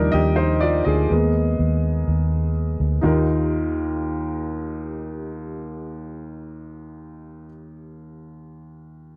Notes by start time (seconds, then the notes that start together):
Already playing: D#2 F3 G3 A#3 D4 D#4 G4 A#4
0.12 D#2 G4 D#5
0.36 D#4 C5
0.61 F4 D5
0.85 D2 G#4 D#5
1.09 D#2 G#3 A#3 B3
1.59 D#2
2.08 D#2
2.80 D2
3.01 D#2 D#4 F4 G4
3.05 A#4